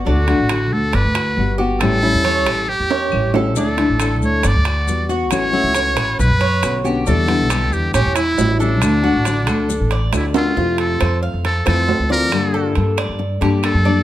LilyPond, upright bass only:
\new Staff \with { instrumentName = "Upright bass" } { \clef bass \time 4/4 \key d \major \tempo 4 = 137 d,8. a,,8. d,8 g,,16 d,8. g,,4 | a,,8. e,8. a,,8. e,8. a,,4 | d,8. a,,8. d,8 g,,16 d,8. e,4 | a,,8. cis,8. a,,8 b,,16 fis,8. b,,4 |
e,8. b,,8. e,8 a,,16 e,8. a,,4 | d,8. a,,8. d,8. a,,8. d,4 | f,4 f,8. f,8. f,8. d,8. | g,4 g,8. g,8. g,8. fis,8. | }